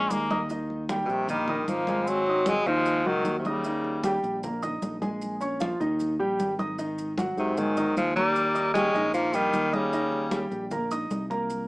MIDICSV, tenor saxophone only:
0, 0, Header, 1, 2, 480
1, 0, Start_track
1, 0, Tempo, 392927
1, 610, Time_signature, 4, 2, 24, 8
1, 14265, End_track
2, 0, Start_track
2, 0, Title_t, "Tenor saxophone"
2, 0, Program_c, 0, 66
2, 1283, Note_on_c, 0, 47, 55
2, 1337, Note_on_c, 0, 48, 80
2, 1355, Note_off_c, 0, 47, 0
2, 1573, Note_off_c, 0, 48, 0
2, 1579, Note_on_c, 0, 51, 87
2, 2061, Note_on_c, 0, 53, 86
2, 2079, Note_off_c, 0, 51, 0
2, 2549, Note_on_c, 0, 54, 97
2, 2567, Note_off_c, 0, 53, 0
2, 3037, Note_on_c, 0, 56, 110
2, 3055, Note_off_c, 0, 54, 0
2, 3261, Note_on_c, 0, 53, 104
2, 3279, Note_off_c, 0, 56, 0
2, 3742, Note_on_c, 0, 51, 99
2, 3760, Note_off_c, 0, 53, 0
2, 4130, Note_off_c, 0, 51, 0
2, 4139, Note_on_c, 0, 48, 56
2, 4241, Note_on_c, 0, 49, 78
2, 4260, Note_off_c, 0, 48, 0
2, 5186, Note_off_c, 0, 49, 0
2, 9023, Note_on_c, 0, 48, 82
2, 9261, Note_on_c, 0, 51, 97
2, 9280, Note_off_c, 0, 48, 0
2, 9727, Note_off_c, 0, 51, 0
2, 9735, Note_on_c, 0, 53, 89
2, 9956, Note_off_c, 0, 53, 0
2, 9964, Note_on_c, 0, 55, 107
2, 10638, Note_off_c, 0, 55, 0
2, 10673, Note_on_c, 0, 56, 109
2, 11127, Note_off_c, 0, 56, 0
2, 11161, Note_on_c, 0, 53, 96
2, 11422, Note_on_c, 0, 51, 100
2, 11440, Note_off_c, 0, 53, 0
2, 11899, Note_on_c, 0, 49, 84
2, 11917, Note_off_c, 0, 51, 0
2, 12853, Note_off_c, 0, 49, 0
2, 14265, End_track
0, 0, End_of_file